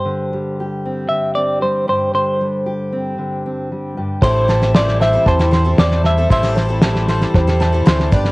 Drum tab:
SD |----------------|----------------|o-ooooo-ooo-ooo-|ooo-ooooooo-oooo|
BD |----------------|----------------|o-------o-------|o-------o-----o-|